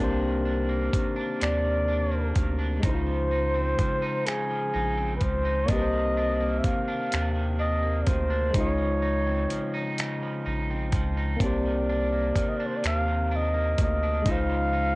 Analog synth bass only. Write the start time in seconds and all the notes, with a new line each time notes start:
0.00 C2
0.94 D#2
1.42 D#2
2.36 D2
2.84 C#2
3.79 A#1
4.75 A#1
5.22 C#2
5.69 C2
6.65 D#2
7.14 D#2
8.08 D2
8.55 C#2
9.52 A#1
10.47 A#1
10.93 C#2
11.41 C2
12.36 D#2
12.85 D#2
13.79 D2
14.27 C#2